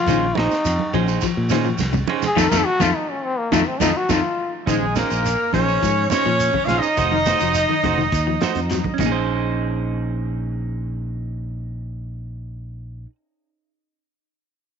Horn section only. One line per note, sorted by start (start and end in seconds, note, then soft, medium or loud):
4.68 4.94 G#3 medium
4.68 4.94 G#4 medium
4.96 5.54 A#3 medium
4.96 5.54 A#4 medium
5.54 6.07 C#4 medium
5.54 6.07 C#5 medium
6.09 6.64 C#4 medium
6.09 6.64 C#5 loud
6.65 6.82 F4 medium
6.65 6.82 F5 loud
6.79 8.97 D#4 loud
6.79 8.97 D#5 loud